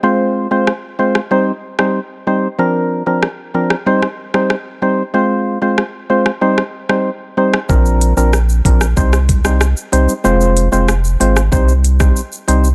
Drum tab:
HH |----------------|----------------|----------------|--x---x---x---x-|
SH |----------------|----------------|----------------|xxxxxxxxxxxxxxxx|
SD |----r--r---r----|----r--r-r-rr---|----r--r-r-r---r|----r--r-r-rr---|
BD |----------------|----------------|----------------|o-----o-o-o-----|

HH |--x---x---x---x-|
SH |xxxxxxxxxxxxxxxx|
SD |----r--r---r----|
BD |--------o--o----|